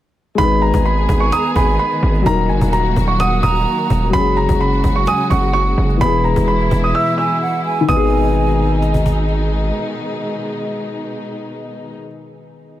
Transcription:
0.35 G#1 D#3 G#3 B3 D#4 G#4 B5, cajon bass
0.43 B4
0.62 A#5, cajon slap
0.74 G#1, cajon bass
0.85 B5, cajon slap
0.97 cajon slap
1.09 G#1, cajon bass
1.20 C#6
1.32 A#5 D#6, cajon slap
1.44 cajon slap
1.56 G#1 G#5 B5, cajon bass
1.79 B5, cajon slap
1.91 cajon slap
2.03 G#1
2.14 cajon slap
2.22 F#3 D#4
2.26 D#1 F#3 A#3 F#4 A#4 A#5, cajon bass
2.49 F#1 G#5, cajon slap
2.61 D#1, cajon bass
2.73 A#5, cajon slap
2.85 cajon slap
2.96 D#1, cajon bass
3.08 C#6
3.20 F#5 D#6, cajon slap
3.43 D#1 A#5 D#6, cajon bass
3.55 cajon slap
3.67 cajon slap
3.78 cajon slap
3.90 D#1, cajon bass
4.10 F#1 C#3 F#3 G#3 C#4 F#4 B5, cajon bass
4.18 G#4
4.37 A#5, cajon slap
4.49 F#1, cajon bass
4.61 B5
4.72 cajon slap
4.84 F#1, cajon bass
4.96 C#6
5.07 G#5 D#6, cajon slap
5.19 cajon slap
5.30 F#1 F#5 C#6, cajon bass
5.42 cajon slap
5.53 C#6, cajon slap
5.66 cajon slap
5.78 F#1
5.89 cajon slap
5.97 E1 B2 E3 B3 E4 B5, cajon bass
6.05 G#4
6.24 A#5, cajon slap
6.36 E1, cajon bass
6.48 B5
6.60 cajon slap
6.71 E1, cajon bass
6.84 D#6
6.89 cajon slap
6.95 E5 E6
7.18 G#5 E6
7.42 F#5
7.65 G#5
7.81 D#3
7.88 G#1 B2 D#3 G#3 B3 D#4 G#5 D#6, cajon bass
7.96 G#4
8.82 cajon slap
8.94 cajon bass
9.06 cajon bass

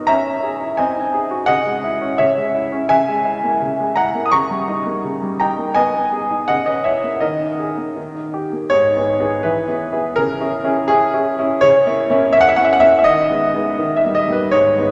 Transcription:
0.07 C#4 E5 A#5
0.26 C#4
0.43 G#4
0.61 E4
0.77 C4 D#5 G#5
0.96 D#4
1.14 G#4
1.31 F#4
1.46 C#3 D#5 F#5
1.66 G#3
1.84 E4
2.01 C#4
2.18 C#3 C#5 E5
2.37 G#3
2.54 E4
2.72 C#4
2.89 C#3 E5 G#5
3.09 G#3
3.25 E4
3.44 A#3
3.61 C#3
3.79 G#3
3.96 E4 F#5 A#5
4.15 A#3
4.26 D#6
4.32 C#3 A#5 C#6
4.51 G3
4.68 D#4
4.86 A#3
5.04 C#3
5.22 G3
5.40 D#4 G5 A#5
5.58 A#3
5.74 B3 D#5 G#5
5.94 B3
6.13 G#4
6.31 D#4
6.48 C#3 D#5 F#5
6.66 C#4 B4 D#5
6.84 E4 C#5 E5
7.03 A#3
7.20 D#3 A#4 D#5
7.40 D#4
7.59 G#4
7.77 A#3
7.96 D#3
8.15 D#4
8.34 G4
8.53 A#3
8.70 G#2 C#5
8.96 B3 D#4 G#4
9.20 B3 D#4 G#4
9.43 E3 B4
9.68 B3 E4 G#4
9.92 B3 E4 G#4
10.16 C#3 A#4
10.41 C#4 E4 G#4
10.64 C#4 E4 G#4
10.88 C#4 E4 G#4
11.14 C#4 E4 G#4
11.39 C#4 E4 G#4
11.61 C#3 C#5
11.86 A#3 C#4 E4
12.10 A#3 C#4 E4
12.33 A#3 C#4 E4 E5
12.41 F#5
12.49 E5
12.56 A#3 C#4 E4 F#5
12.65 E5
12.73 F#5
12.80 A#3 C#4 E4 E5
12.99 E5
13.04 D#3 D#5
13.30 G#3 B3 D#4
13.54 G#3 B3 D#4
13.78 D#3
13.96 E5
14.04 G3 A#3 D#4
14.15 D#5
14.28 G3 A#3 D#4
14.32 B4
14.51 G#2 C#5
14.78 G#3 B3 D#4

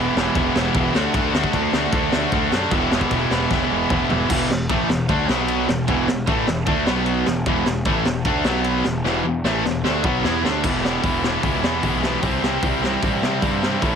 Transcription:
Already playing: E2 B2 E3 G#3 B3 E4
0.15 E1 E2 B2 E3 G#3 B3 E4, snare
0.35 E1 E2 B2 E3 G#3 B3 E4, kick, crash
0.54 E1 E2 B2 E3 G#3 B3 E4, snare
0.74 E1 E2 B2 E3 G#3 B3 E4, kick, crash
0.93 D2 D3 A3 D4 F#4, snare
1.13 D2 D3 A3 D4 F#4, kick, crash
1.33 D2 D3 A3 D4 F#4, snare
1.44 kick
1.53 D2 D3 A3 D4 F#4, kick, crash
1.73 D2 D3 A3 D4 F#4, snare
1.92 D2 D3 A3 D4 F#4, kick, crash
2.12 D2 D3 A3 D4 F#4, snare
2.32 D2 D3 A3 D4 F#4, kick, crash
2.52 F#2 D3 A3 D4 F#4, snare
2.71 E1 E2 B2 E3 G#3 B3 E4, kick, crash
2.91 E1 E2 B2 E3 G#3 B3 E4, snare
3.01 kick
3.11 E1 E2 B2 E3 G#3 B3 E4, kick, crash
3.30 E1 E2 B2 E3 G#3 B3 E4, snare
3.50 E1 E2 B2 E3 G#3 B3 E4, kick, snare
3.70 E1 E2 B2 E3 G#3 B3 E4
3.89 E1 E2 B2 E3 G#3 B3 E4, kick, mid tom
4.09 E1 E2 B2 E3 G#3 B3 E4, floor tom
4.30 E1 E2 B2 E3, kick, crash
4.50 E1 E2 B2, snare
4.69 A1 A2 E3 A3, kick, ride
4.89 E1 E2 B2, snare
5.08 D2 D3 A3 D4, kick, ride
5.28 B1 B2 F#3 B3, snare
5.48 ride
5.68 E1 E2 B2, snare
5.88 E1 E2 B2 E3, kick, ride
6.08 E1 E2 B2, snare
6.27 A1 A2 E3 A3, kick, ride
6.47 E1 E2 B2, snare
6.66 D2 D3 A3 D4, kick, ride
6.86 B1 B2 F#3 B3, snare
7.06 ride
7.26 E1 E2 B2, snare
7.46 E1 E2 B2 E3, kick, ride
7.66 E1 E2 B2, snare
7.85 A1 A2 E3 A3, kick, ride
8.05 E1 E2 B2, snare
8.25 D2 D3 A3 D4, kick, ride
8.44 B1 B2 F#3 B3, snare
8.64 ride
8.84 E1 E2 B2, snare
9.04 E1 E2 B2 E3, snare
9.24 E1 E2 B2
9.44 A1 A2 E3 A3, snare
9.64 E1 E2 B2, snare
9.83 D2 D3 A3 D4, snare
10.04 B1 B2 F#3 B3, kick
10.24 E2 E3 B3 E4, snare
10.44 D2 D3 A3 D4, snare
10.64 E1 E2 B2 E3 G#3 B3 E4, kick, crash
10.83 E2 B2 E3 G#3 B3 E4, snare
11.03 E1 E2 B2 E3 G#3 B3 E4, kick, open hi-hat
11.23 E2 B2 E3 G#3 B3 E4, snare
11.43 C#2 E2 B2 E3 G#3 B3 E4, kick, open hi-hat
11.63 E2 B2 E3 G#3 B3 E4, snare
11.83 B1 E2 B2 E3 G#3 B3 E4, kick, open hi-hat
12.02 E2 B2 E3 G#3 B3 E4, snare
12.23 C2 C3 E3 G3 C4 E4, kick, open hi-hat
12.42 C3 E3 G3 C4 E4, snare
12.62 C2 C3 E3 G3 C4 E4, kick, open hi-hat
12.82 C3 E3 G3 C4 E4, snare
13.03 A1 C3 E3 G3 C4 E4, kick, open hi-hat
13.22 C3 E3 G3 C4 E4, snare
13.42 G2 C3 E3 G3 C4 E4, kick, open hi-hat
13.62 C3 E3 G3 C4 E4, snare
13.82 A1 A2 E3 A3 C#4 E4, kick, open hi-hat

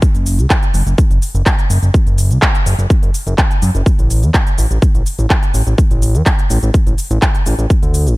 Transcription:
0.02 kick, closed hi-hat, cabasa
0.15 F#1, closed hi-hat, cabasa
0.26 open hi-hat, cabasa
0.39 C#2, closed hi-hat, cabasa
0.50 kick, clap, closed hi-hat, cabasa
0.63 closed hi-hat, cabasa
0.74 F#1, open hi-hat, cabasa
0.87 F#1, closed hi-hat, cabasa
0.98 kick, closed hi-hat, cabasa
1.11 F#1, closed hi-hat, cabasa
1.22 open hi-hat, cabasa
1.35 F#1, closed hi-hat, cabasa
1.46 kick, clap, closed hi-hat, cabasa
1.59 closed hi-hat, cabasa
1.70 F#1, open hi-hat, cabasa
1.83 F#1, closed hi-hat, cabasa
1.94 kick, closed hi-hat, cabasa
2.07 F#1, closed hi-hat, cabasa
2.18 open hi-hat, cabasa
2.31 C#2, closed hi-hat, cabasa
2.42 kick, clap, closed hi-hat, cabasa
2.55 closed hi-hat, cabasa
2.66 F#1, open hi-hat, cabasa
2.79 F#1, closed hi-hat, cabasa
2.90 kick, closed hi-hat, cabasa
3.03 F#1, closed hi-hat, cabasa
3.14 open hi-hat, cabasa
3.27 F#1, closed hi-hat, cabasa
3.38 kick, clap, closed hi-hat, cabasa
3.51 closed hi-hat, cabasa
3.62 F#2, open hi-hat, cabasa
3.75 F#1, closed hi-hat, cabasa
3.86 kick, closed hi-hat, cabasa
3.99 A1, closed hi-hat, cabasa
4.10 open hi-hat, cabasa
4.23 E2, closed hi-hat, cabasa
4.34 kick, clap, closed hi-hat, cabasa
4.47 closed hi-hat, cabasa
4.58 A1, open hi-hat, cabasa
4.71 A1, closed hi-hat, cabasa
4.82 kick, closed hi-hat, cabasa
4.95 A1, closed hi-hat, cabasa
5.06 open hi-hat, cabasa
5.19 A1, closed hi-hat, cabasa
5.30 kick, clap, closed hi-hat, cabasa
5.43 closed hi-hat, cabasa
5.54 A1, open hi-hat, cabasa
5.67 A1, closed hi-hat, cabasa
5.78 kick, closed hi-hat, cabasa
5.91 A1, closed hi-hat, cabasa
6.02 open hi-hat, cabasa
6.15 E2, closed hi-hat, cabasa
6.26 kick, clap, closed hi-hat, cabasa
6.39 closed hi-hat, cabasa
6.50 A1, open hi-hat, cabasa
6.63 A1, closed hi-hat, cabasa
6.74 kick, closed hi-hat, cabasa
6.87 A1, closed hi-hat, cabasa
6.98 open hi-hat, cabasa
7.11 A1, closed hi-hat, cabasa
7.22 kick, clap, closed hi-hat, cabasa
7.35 closed hi-hat, cabasa
7.46 A1, open hi-hat, cabasa
7.59 A1, closed hi-hat, cabasa
7.70 kick, closed hi-hat, cabasa
7.83 D2, closed hi-hat, cabasa
7.94 open hi-hat, cabasa
8.07 A1, closed hi-hat, cabasa

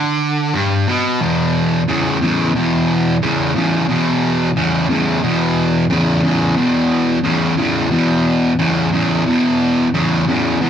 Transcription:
Already playing: D3
0.54 G2
0.87 B2
1.21 E2 B2
1.88 E2 C#3
2.21 E2 C#3
2.55 E2 B2
3.22 E2 C#3
3.55 E2 C#3
3.89 E2 B2
4.56 E2 C#3
4.89 E2 C#3
5.23 E2 B2
5.90 E2 C#3
6.24 E2 C#3
6.56 E2 B2
7.24 E2 C#3
7.57 E2 C#3
7.91 E2 B2
8.59 E2 C#3
8.92 E2 C#3
9.26 E2 B2
9.94 E2 C#3
10.28 E2 C#3
10.61 E2 B2

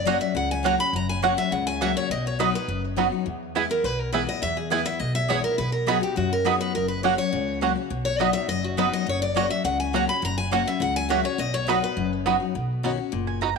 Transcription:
Already playing: F#1 F#2
0.05 F#3 A#3 C#4 F#4 C#5 D#5 F#5
0.20 C#4 F#4 E5
0.35 C#2 C#3 F#5
0.51 G#5
0.63 F#3 A#3 C#4 F#4 C#5 F#5 A#5
0.78 C#4 F#4 B5
0.93 F#1 F#2 A#5
1.09 G#5
1.22 F#3 A#3 C#4 F#4 C#5 F#5
1.37 C#4 F#4 E5
1.51 C#2 C#3 F#5
1.67 G#5
1.81 F#3 A#3 C#4 F#4 C#5 E5 F#5
1.97 C#5
2.10 B1 B2 D#5
2.27 C#5
2.39 F#3 B3 D#4 F#4 B4 D#5 B5
2.54 D#4 F#4 B4
2.68 F#1 F#2
2.96 F#3 B3 D#4 F#4 D#5 B5
3.12 D#4 F#4
3.26 E2
3.55 E3 G#3 B3 E4 G#4 B4 G#5
3.70 B3 E4 A#4
3.84 B1 B2 B4
4.00 A#4
4.13 E3 G#3 B3 E4 G#4 B4 G#5
4.27 B3 E4 D#5
4.42 E2 E5
4.57 G#4
4.70 E3 G#3 B3 E4 G#4 B4 G#5
4.85 B3 E4 E5
4.99 B1 B2 D#5
5.15 E5
5.28 E3 G#3 B3 E4 G#4 B4 C#5 G#5
5.44 B3 E4 A#4
5.58 B1 B2 B4
5.72 A#4
5.86 F#3 B3 D#4 F#4 G#4 D#5 B5
6.01 D#4 F#4 G4
6.16 F#2 F#4
6.33 A#4
6.45 F#3 B3 D#4 F#4 G#4 D#5 B5
6.61 B4
6.75 F#1 F#2 A#4
6.88 B4
7.03 F#3 A#3 C#4 F#4 C#5 F#5
7.17 C#4 F#4 C#5
7.33 C#2 C#3
7.61 F#3 A#3 C#4 F#4 C#5 F#5
7.76 C#4 F#4
7.90 B1 B2
8.05 C#5
8.19 F#3 B3 D#4 F#4 D#5 B5
8.33 D#4 F#4 E5
8.48 F#1 F#2 D#5
8.64 F#4
8.77 F#3 B3 D#4 F#4 B4 D#5 B5
8.93 D#5
9.06 F#1 F#2 C#5
9.22 D5
9.35 F#3 A#3 C#4 F#4 C#5 D#5 F#5
9.49 C#4 F#4 E5
9.64 C#2 C#3 F#5
9.80 G#5
9.93 F#3 A#3 C#4 F#4 C#5 F#5 A#5
10.07 C#4 F#4 B5
10.22 F#1 F#2 A#5
10.38 G#5
10.51 F#3 A#3 C#4 F#4 C#5 F#5
10.66 C#4 F#4 E5
10.80 C#2 C#3 F#5
10.96 G#5
11.09 F#3 A#3 C#4 F#4 C#5 E5 F#5
11.23 C#4 F#4 C#5
11.38 B1 B2 D#5
11.54 C#5
11.67 F#3 B3 D#4 F#4 B4 D#5 B5
11.82 D#4 F#4 B4
11.97 F#1 F#2
12.26 F#3 B3 D#4 F#4 D#5 B5
12.40 D#4 F#4
12.55 B1 B2
12.83 B2 D#3 B3 C#4 D#4 F#4
12.97 C#4 F#4
13.12 F#1 A#2
13.27 G#5
13.41 G#2 B3 D#4 F#4 A#5

